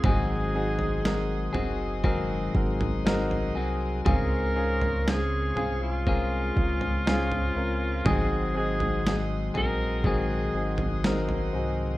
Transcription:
Already playing: tonewheel organ G#4 C6
0.04 sub bass G#1, clean electric guitar G#2 D#3 F#3 C4 F#4 G#4, grand piano G#2 D#3 C4 D#4 F#4 G#4, alto saxophone G#4, tonewheel organ F#5 D#6, kick, floor tom
0.54 grand piano C4 D#4 F#4 G#4
0.79 floor tom
1.03 grand piano C4 D#4 F#4 A#4, snare
1.53 sub bass F#1, clean electric guitar F#3 C4 F#4 G#4, grand piano C4 D#4 F#4 G#4, floor tom
2.04 clean electric guitar G#2 D#3 F#3 C4 F#4 G#4, grand piano C4 D#4 F#4 A#4, kick, floor tom
2.54 sub bass G#1, grand piano C4 D#4 F#4 A#4, kick
2.81 floor tom
3.05 grand piano C4 D#4 F#4 A#4, snare
3.31 floor tom
3.55 sub bass C2, clean electric guitar F#3 C4 F#4 G#4, grand piano C4 D#4 F#4 G#4
4.05 sub bass C#2, grand piano G#2 C4 C#4 F4 G#4, clean electric guitar C#3 G#3 C4 F4 G#4, tonewheel organ G#4 F5 C#6, alto saxophone A#4, kick, floor tom
4.55 grand piano C4 C#4 F4 G#4
4.81 floor tom
5.06 grand piano C4 C#4 F4 G#4, alto saxophone G#4, snare
5.55 sub bass C2, grand piano C4 C#4 F4 G#4, clean electric guitar C4 F4 G#4, floor tom
5.83 alto saxophone F4
6.06 clean electric guitar G#3 C4 F4 G#4, grand piano C4 C#4 F4 A#4, tonewheel organ A#5, kick
6.56 sub bass C#2, grand piano C4 C#4 F4 G#4, kick
6.81 floor tom
7.06 grand piano C4 C#4 F4 G#4, snare
7.32 floor tom
7.55 sub bass C#2, grand piano C4 C#4 F4 A#4
8.05 sub bass G#1, clean electric guitar G#2 D#3 F#3 G#3 C4 G#4, grand piano G#2 D#3 C4 D#4 F#4 G#4, alto saxophone G#4, tonewheel organ F#5 C6 D#6, kick, floor tom
8.54 grand piano C4 D#4 F#4 G#4, alto saxophone G#4
8.80 floor tom
9.05 grand piano C4 D#4 F#4 G#4, snare
9.54 sub bass A#1, clean electric guitar F#3 G#3 C4 G#4, grand piano C4 D#4 F#4 G#4, alto saxophone A#4, floor tom
10.04 clean electric guitar G#2 D#3 F#3 G#3 C4 G#4, grand piano C4 D#4 F#4 A#4, alto saxophone G#4, kick
10.54 sub bass G#1, grand piano C4 D#4 F#4 G#4
10.78 floor tom
11.04 grand piano C4 D#4 F#4 A#4, snare
11.29 floor tom
11.52 sub bass C2, grand piano C4 D#4 F#4 G#4

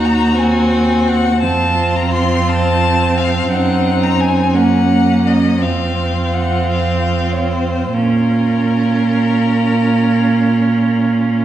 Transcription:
Already playing: cello D#2, viola D#4, violin F#4
0.05 violin A#5
0.38 viola C4, violin G#5
1.08 violin F#5
1.40 cello F2, viola C4, violin F4 A5
1.96 violin A#5
2.14 violin C6
2.49 violin A5
3.18 violin F5
3.51 cello F#2, violin D#4 F#5
4.03 violin A#5
4.20 violin G#5
4.54 viola A#3, violin C#4 F#5
5.27 violin D#5
5.62 cello F2, viola C4, violin F4 F5
6.33 violin F#5
6.71 violin F5
7.32 violin C#5
7.51 violin C5
7.93 cello A#2, viola C#4, violin F4 A#4

